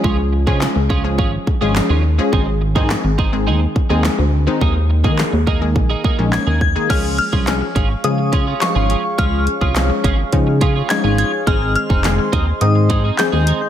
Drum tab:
CC |----------------|----------------|----------------|x---------------|
HH |----------------|----------------|----------------|x-x-x-x-x-x-x-x-|
CP |----x-------x---|----x-------x---|----x-------x---|----x-------x---|
SD |----o-------o---|----o-------o---|----o-------o---|----o-------o---|
BD |o--o--o-o-o-----|o--o--o---o-----|o--o--o-o-o---o-|o--o--o---o-----|

CC |----------------|----------------|
HH |x-x-x-x-x-x-x-x-|x-x-x-x-x-x-x-x-|
CP |----x-------x---|----x-------x---|
SD |----o-------o---|----o-------o---|
BD |o--o--o-o-o-----|o--o--o---o-----|